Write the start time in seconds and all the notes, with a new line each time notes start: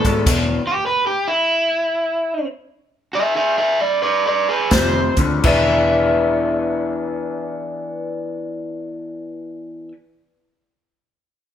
Already playing: A4
0.05 G#2 B2 G#3, kick, closed hi-hat
0.26 E1 E2 B2, kick, closed hi-hat, crash
0.67 G4
0.86 B4
1.07 G4
1.28 E4
3.13 G#4 E5
3.36 G#4 E5
3.58 G#4 E5
3.80 B4 D5
4.02 B4 D5
4.27 B4 D5
4.49 G#4 B4
4.71 F1 F2 C3 C5, kick, snare, closed hi-hat
5.17 D2 F2 D3, kick, closed hi-hat
5.44 E1 E3 B3 D4 E5, kick, crash
5.48 G#4